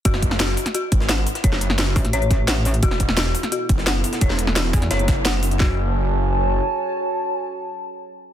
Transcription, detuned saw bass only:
\new Staff \with { instrumentName = "Detuned saw bass" } { \clef bass \time 4/4 \key fis \minor \tempo 4 = 173 fis,,4. r4 gis,,4 r8 | fis,,4. r2 r8 | e,,4. r4 fis,,4 r8 | e,,4. r8 fis,,2 |
fis,,2. r4 | r1 | }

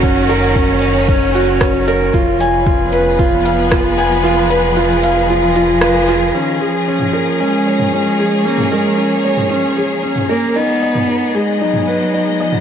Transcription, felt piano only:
\new Staff \with { instrumentName = "Felt piano" } { \time 4/4 \key bes \phrygian \tempo 4 = 114 des'8 bes'8 des'8 des''8 des'8 ges'8 des'8 bes'8 | f'8 aes''8 f'8 ces''8 f'8 f''8 f'8 aes''8 | f'8 ces''8 f'8 f''8 f'8 f'8 ces''8 f'8 | des'8 aes'8 des'8 bes'8 des'8 des''8 des'8 aes'8 |
des'8 bes'8 des'8 des''8 des'8 aes'8 des'8 bes'8 | ees'8 ees''8 ees'8 aes'8 ees'8 ces''8 ees'8 ees''8 | }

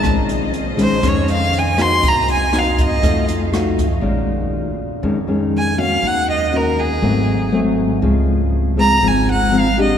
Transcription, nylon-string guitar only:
\new Staff \with { instrumentName = "Nylon-string guitar" } { \time 4/4 \key bes \minor \tempo 4 = 120 << { <ees aes des'>4 r8 <ees aes des'>8 <ees aes des'>4. <bes ees' ges'>8~ | <bes ees' ges'>4 <bes ees' ges'>4 <a ees' ges'>4 <a ees' ges'>8 r8 | <ees aes des'>4. r8 <ees aes des'>8 <ees aes des'>4 <bes des' ges'>8~ | <bes des' ges'>4 <bes des' ges'>4 <ges a c'>4 <ges a c'>4 |
<f aes c'>4. <f aes c'>8 <f aes c'>4 <f aes c'>8 <aes d' g'>8 | } \\ { bes,2 f,2 | c2 f2 | bes,2 f,2 | ees2 aes,2 |
des2 aes,2 | } >> }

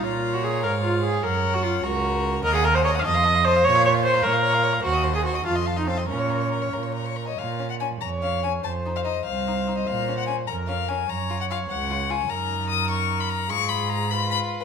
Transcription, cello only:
\new Staff \with { instrumentName = "Cello" } { \clef bass \time 6/8 \key bes \minor \tempo 4. = 99 bes,4. aes,4. | ges,4. des,4. | ees,4. f,4. | bes,4. bes,4. |
ees,4. f,4. | bes,4. bes,4. | bes,4. f,4. | f,4. c,4. |
bes,4. f,4. | ges,4. des,4. | \key ees \minor ges,2. | aes,2. | }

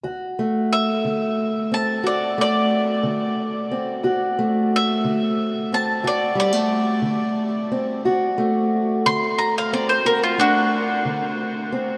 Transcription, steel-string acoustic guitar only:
\new Staff \with { instrumentName = "Steel-string acoustic guitar" } { \time 12/8 \key d \dorian \tempo 4. = 60 << { fis'8 a2 c'8 fis'8 a2 c'8 | fis'8 a2 c'8 fis'8 g16 a4.~ a16 c'8 | fis'8 a2 c'8 fis'8 a2 c'8 | } \\ { d,4 r8 d4 r8 d,4 r8 d4 r8 | d,4 r8 d4 r8 d,4 r8 d4 r8 | d,4 r8 d4 r8 d,4 r8 d4 r8 | } >> }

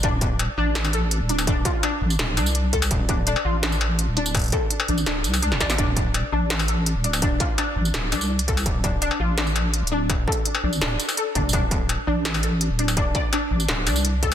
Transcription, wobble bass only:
\new Staff \with { instrumentName = "Wobble bass" } { \clef bass \time 4/4 \key d \minor \tempo 4 = 167 d,,4~ d,,16 r16 a,,4.~ a,,16 d,,8.~ | d,,8 r4 a,,8 d,,8 c,4. | d,,4~ d,,16 r16 a,,4.~ a,,16 d,,8.~ | d,,8 r4 a,,8 d,,8 c,8. d,,16 a,,8 |
d,,4~ d,,16 r16 a,,4.~ a,,16 d,,8.~ | d,,8 r4 a,,8 d,,8 c,4. | d,,4~ d,,16 r16 a,,4.~ a,,16 d,,8.~ | d,,8 r4 a,,8 d,,8 r4 f,,8 |
d,,4~ d,,16 r16 a,,4.~ a,,16 d,,8.~ | d,,8 r4 a,,8 d,,8 c,4. | }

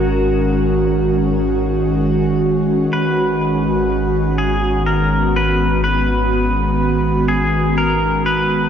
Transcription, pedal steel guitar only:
\new Staff \with { instrumentName = "Pedal steel guitar" } { \time 3/4 \key gis \minor \tempo 4 = 62 fis'2~ fis'8 r8 | b'4. gis'8 ais'8 b'8 | b'4. gis'8 ais'8 b'8 | }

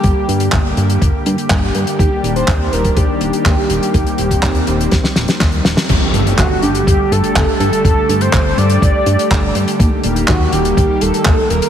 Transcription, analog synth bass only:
\new Staff \with { instrumentName = "Analog synth bass" } { \clef bass \time 4/4 \key ees \lydian \tempo 4 = 123 g,,8 g,8 g,,8 g,8 g,,8 g,8 g,,8 g,8 | ees,8 ees,,8 ees,8 ees,,8 ees,8 ees,,8 ees,8 ees,,8 | ees,8 ees,,8 ees,8 ees,,8 ees,8 ees,,8 ees,8 ees,,8 | \key g \minor g,,8 g,8 g,,8 g,8 g,,8 g,8 g,,8 g,8 |
g,,8 g,8 g,,8 g,8 g,,8 g,8 g,,8 g,8 | ees,8 ees,,8 ees,8 ees,,8 ees,8 ees,,8 ees,8 ees,,8 | }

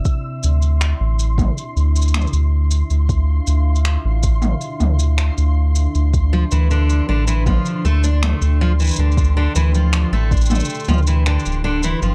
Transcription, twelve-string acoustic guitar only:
\new Staff \with { instrumentName = "Twelve-string acoustic guitar" } { \clef bass \time 4/4 \key d \minor \tempo 4 = 79 r1 | r1 | r16 f16 e16 d8 d16 e16 f8 a16 d'16 a8 f16 e16 d16~ | d16 d16 e16 f8 a16 d'16 a8 f16 e16 d8 d16 e16 f16 | }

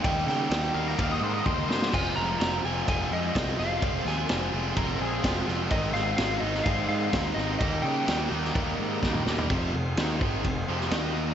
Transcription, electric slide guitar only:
\new Staff \with { instrumentName = "Electric slide guitar" } { \time 4/4 \key f \minor \tempo 4 = 127 g''8 g''4 r2 r8 | aes''8 bes''8 bes''8 aes''8 aes''8 ees''4 f''8~ | f''8 aes''4. r2 | ees''8 f''8 f''8 ees''8 f''8 f''4 ees''8 |
ees''8 g''4 r2 r8 | r1 | }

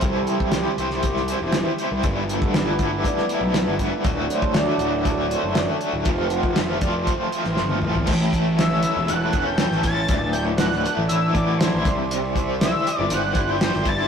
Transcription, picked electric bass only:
\new Staff \with { instrumentName = "Picked electric bass" } { \clef bass \time 4/4 \key c \lydian \tempo 4 = 119 c,8 r8 c,16 r16 c,4~ c,16 e,,8 r8 c,16 | g,,4 g,,8 g,,8 r8. b,,8 g,,8 r16 | d,,8 r8 d,16 r16 d,,4~ d,,16 fis,,8 r8 d,,16 | f,,4 f,,8 f,,8 r8. a,,16 g,,8 a,,8 |
a,,4.~ a,,16 e,,16 e,,8 e,,8. a,,8. | d,,4.~ d,,16 a,,16 a,,8 a,,8. a,,16 c,8~ | c,4. r16 g,,16 g,,8 g,,8. g,,8. | }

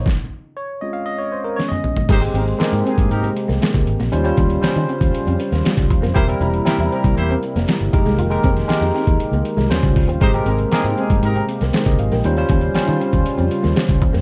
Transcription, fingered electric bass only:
\new Staff \with { instrumentName = "Fingered electric bass" } { \clef bass \time 4/4 \key aes \major \tempo 4 = 118 r1 | aes,,8 aes,,8 r16 aes,16 r16 g,16 aes,8 r16 c,16 r16 des,16 aes,,16 bes,,16 | ees,8 ees,8 r16 ees16 r16 ees,16 r16 f,16 r16 ees,16 r16 des,16 ees,16 f,16 | e,,8 e,,8 r16 e,16 r16 c,16 e,8 r16 f,,16 r16 g,,16 f,,16 c,16 |
f,,8 f,,8 r16 f,16 r16 ees,16 r16 des,16 r16 c,16 ees,16 des,16 des,16 ees,16 | aes,,8 aes,,8 r16 aes,16 r16 g,16 aes,8 r16 c,16 r16 des,16 aes,,16 bes,,16 | ees,8 ees,8 r16 ees16 r16 ees,16 r16 f,16 r16 ees,16 r16 des,16 ees,16 f,16 | }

